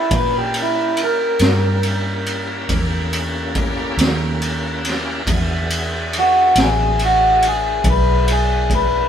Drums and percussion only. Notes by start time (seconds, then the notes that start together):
0.11 kick, ride
0.54 ride
0.97 ride
1.39 snare, ride
1.83 ride
2.26 ride
2.69 kick, ride
3.13 ride
3.55 kick, ride
3.98 snare, ride
4.42 ride
4.85 snare, ride
5.27 kick, ride
5.70 ride
6.13 ride
6.55 snare, ride
6.99 ride
7.42 ride
7.84 kick, ride
8.28 ride
8.70 kick, ride